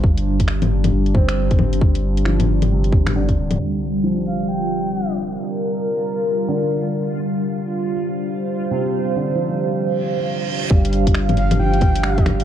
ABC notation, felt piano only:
X:1
M:4/4
L:1/16
Q:"Swing 16ths" 1/4=135
K:Gm
V:1 name="Felt piano" clef=bass
F3 z6 z C6- | C4 F,4 C,4 D,4- | D,2 z2 F,12- | F, z8 z D,6- |
D,6- D, z6 z C,2- | C,2 D, F, G,12 | G,8 F,4 G,4 |]